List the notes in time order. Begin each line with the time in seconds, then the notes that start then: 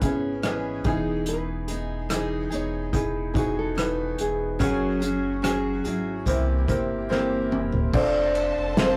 Already playing: C#4 E4 B4 C#5
0.01 G#1 B3 C#4 E4 G#4, kick, closed hi-hat
0.42 E3 B3 C#4 E4 G#4 B4 D#5, cross-stick, closed hi-hat
0.84 E1 E3 B3 D#4 E4 G#4, kick, closed hi-hat
1.26 B4, closed hi-hat
1.68 B3 D#4 G#4, closed hi-hat
2.09 E3 B3 D#4 E4 G#4, cross-stick, closed hi-hat
2.50 E1 B3 D#4 G#4, closed hi-hat
2.55 C#5
2.93 D#4 E4 G#4 B4, kick, closed hi-hat
3.34 B3 D#4 E4 F#4 G#4, kick, closed hi-hat
3.59 A4
3.75 E3 B3 D#4 E4 B4, cross-stick, closed hi-hat
4.18 E1 G#4, closed hi-hat
4.59 F#1 F#2 C#3 F#3 C#4 F#4 G#4, kick, closed hi-hat
5.00 F#3 C#4 F#4 G#4, closed hi-hat
5.42 F#3 C#4 F#4 G#4, cross-stick, closed hi-hat
5.84 G#1 F#3 C#4 E4 F#4 G#4, closed hi-hat
6.26 C2 C3 E3 A#3 C4 E4 G4 A#4, kick, closed hi-hat
6.68 G1 A#3 C4 E4 G4 A#4, kick, closed hi-hat
7.09 E3 A#3 C4 E4 G4 A#4 C5, snare
7.51 E1 E3 E4, mid tom
7.73 floor tom
7.93 F1 C4 D4 F4 A4 C5 D5 A5, kick, crash
8.35 ride
8.56 F1
8.77 C4 F4 A#4 C5, snare, ride
8.85 C5